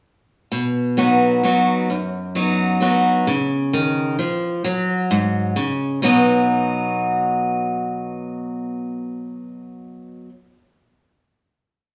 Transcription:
0.52 1.40 B2 medium
0.97 1.41 F#3 medium
0.97 1.42 B3 medium
0.97 1.42 D#4 medium
0.97 1.42 F#4 medium
1.43 1.88 F#3 medium
1.43 1.88 B3 medium
1.43 1.88 D#4 medium
1.43 1.88 F#4 medium
1.90 2.78 F#2 medium
2.35 2.79 F#3 medium
2.35 2.80 B3 medium
2.35 2.80 D#4 medium
2.35 2.80 F#4 medium
2.81 3.25 F#3 medium
2.81 3.26 B3 medium
2.81 3.26 D#4 medium
2.81 3.26 F#4 medium
3.27 4.16 C#3 medium
3.73 4.17 D#3 medium
4.19 4.63 F3 medium
4.64 5.53 F#3 medium
5.11 5.55 G#2 medium
5.56 6.01 C#3 medium
6.02 10.29 B2 medium
6.02 10.29 F#3 medium
6.02 10.30 B3 medium
6.02 10.30 D#4 medium
6.02 10.30 F#4 medium

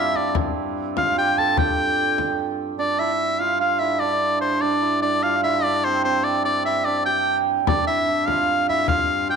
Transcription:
0.00 2.79 G2 medium
0.00 1.44 A#3 medium
0.00 3.44 C4 medium
0.00 0.14 D4 medium
0.00 1.03 E4 medium
0.00 1.17 G4 medium
0.00 0.18 E5 medium
0.14 2.78 D4 medium
0.14 0.36 D5 medium
0.14 frame drum soft
0.35 frame drum medium
0.97 3.06 F4 medium
0.97 1.16 F5 medium
0.97 frame drum medium
1.17 1.58 G4 medium
1.17 1.40 G5 loud
1.38 4.31 A4 medium
1.38 1.58 A5 medium
1.38 frame drum soft
1.57 4.72 G4 medium
1.57 2.56 G5 loud
1.57 frame drum medium
1.79 frame drum soft
2.18 frame drum medium
2.79 7.66 G2 medium
2.79 4.01 D4 medium
2.79 3.01 D5 medium
2.99 3.46 E4 medium
2.99 3.41 E5 medium
3.40 3.60 F4 medium
3.40 3.60 F5 medium
3.60 3.87 F4 medium
3.60 3.81 F5 medium
3.79 4.81 E4 medium
3.79 4.01 E5 medium
4.00 4.62 D4 medium
4.00 4.41 D5 medium
4.41 4.63 C5 medium
4.61 5.02 D4 medium
4.61 5.01 D5 medium
4.82 5.29 E4 medium
5.02 5.65 D4 medium
5.02 5.24 D5 medium
5.23 5.50 F4 medium
5.23 5.43 F5 medium
5.43 6.66 E4 medium
5.43 5.65 E5 medium
5.63 6.45 D4 medium
5.63 5.86 D5 medium
5.84 6.05 C4 medium
5.84 6.04 C5 medium
6.04 9.36 C4 medium
6.04 6.26 C5 medium
6.24 6.45 D5 medium
6.45 6.86 D4 medium
6.45 6.64 D5 medium
6.65 7.88 E4 medium
6.65 6.86 E5 medium
6.85 7.67 D4 medium
6.85 7.05 D5 medium
7.06 9.29 G4 medium
7.06 7.38 G5 loud
7.67 9.36 G2 medium
7.67 9.36 D4 medium
7.67 7.86 D5 medium
7.67 frame drum medium
7.87 8.07 E4 medium
7.87 8.29 E5 medium
8.08 8.36 E4 medium
8.27 8.75 F4 medium
8.27 8.68 F5 medium
8.27 frame drum medium
8.68 8.95 E4 medium
8.68 8.87 E5 medium
8.68 frame drum soft
8.88 9.36 F4 medium
8.88 9.26 F5 loud
8.88 frame drum medium
9.29 9.36 G4 medium
9.29 9.36 G5 medium

